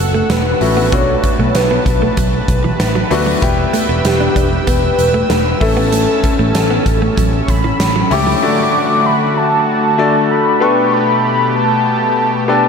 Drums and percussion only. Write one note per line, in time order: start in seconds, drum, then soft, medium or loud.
0.30 snare loud
0.30 closed hi-hat medium
0.61 open hi-hat medium
0.92 kick loud
0.92 closed hi-hat medium
1.24 kick medium
1.24 closed hi-hat medium
1.55 snare loud
1.55 closed hi-hat loud
1.86 kick loud
1.86 closed hi-hat medium
2.17 kick loud
2.17 closed hi-hat medium
2.48 kick medium
2.48 closed hi-hat medium
2.80 snare loud
2.80 closed hi-hat medium
3.11 open hi-hat medium
3.42 kick loud
3.42 closed hi-hat medium
3.74 closed hi-hat medium
4.05 snare loud
4.05 closed hi-hat loud
4.36 kick medium
4.36 closed hi-hat medium
4.67 kick medium
4.67 closed hi-hat medium
4.99 closed hi-hat medium
5.30 snare loud
5.30 closed hi-hat medium
5.61 kick loud
5.61 open hi-hat medium
5.92 closed hi-hat medium
6.24 kick medium
6.24 closed hi-hat medium
6.55 snare loud
6.55 closed hi-hat loud
6.86 kick loud
6.86 closed hi-hat medium
7.17 kick loud
7.17 closed hi-hat medium
7.48 kick medium
7.48 closed hi-hat medium
7.80 snare loud
7.80 closed hi-hat medium
8.11 open hi-hat medium